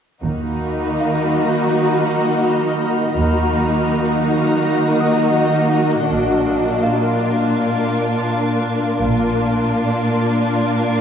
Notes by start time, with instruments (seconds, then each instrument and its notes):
0.22 double bass section D#2, cello section D#3, viola section A#3, violin section D#4 F#4 A#5 B5, ambient pad F#4 D#5
1.00 music box F5
1.70 violin section F6
3.16 double bass section D#2, cello section D#3, viola section A#3, violin section D#4 F#4, ambient pad F#4 D#5 F#5
5.01 music box D#4 D#6
6.09 double bass section A#1, cello section A#2, viola section A#3, violin section D4, ambient pad A#4 F5
6.82 violin section F4, music box F4 F5
9.02 double bass section A#1, cello section A#2, viola section A#3, violin section D4 F4, ambient pad A#4 D5 F5